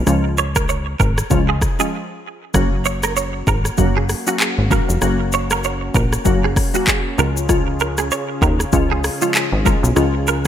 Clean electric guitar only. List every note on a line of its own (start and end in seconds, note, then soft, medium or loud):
0.38 0.49 C#5 medium
0.56 0.64 A#4 medium
0.69 0.80 C#5 medium
1.00 1.11 A#4 medium
1.49 1.57 G#4 medium
1.80 1.93 G#4 medium
2.86 2.97 C#5 medium
3.04 3.12 A#4 medium
3.17 3.28 C#5 medium
3.48 3.59 A#4 medium
3.97 4.05 G#4 medium
4.28 4.36 F#4 medium
4.41 4.52 G#4 medium
4.72 4.83 A#4 medium
5.34 5.45 C#5 medium
5.52 5.60 A#4 medium
5.65 5.76 C#5 medium
5.96 6.06 A#4 medium
6.44 6.52 G#4 medium
6.75 6.83 F#4 medium
6.88 6.99 G#4 medium
7.19 7.30 A#4 medium
7.81 7.92 A#4 medium
7.99 8.07 G#4 medium
8.12 8.23 C#5 medium
8.43 8.54 A#4 medium
8.92 8.99 G#4 medium
9.22 9.30 F4 medium
9.35 9.46 G#4 medium
9.66 9.77 A#4 medium
10.28 10.39 A#4 medium